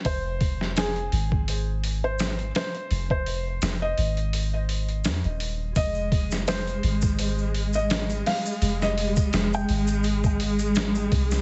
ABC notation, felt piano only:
X:1
M:4/4
L:1/16
Q:"Swing 16ths" 1/4=84
K:Fm
V:1 name="Felt piano"
c4 A4 z3 c3 c2- | c c4 e4 z6 z | e4 c4 z3 e3 f2- | f e4 g4 z6 z |]